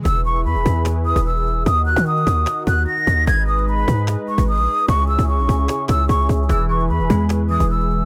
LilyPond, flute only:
\new Staff \with { instrumentName = "Flute" } { \time 4/4 \key e \lydian \tempo 4 = 149 e'''8 cis'''8 b''4 r8 dis'''8 e'''4 | dis'''8 fis'''8 dis'''4. fis'''8 ais'''4 | gis'''8 dis'''8 b''4 r8 cis'''8 dis'''4 | cis'''8 e'''8 cis'''4. e'''8 cis'''8 r8 |
e'''8 cis'''8 b''4 r8 dis'''8 e'''4 | }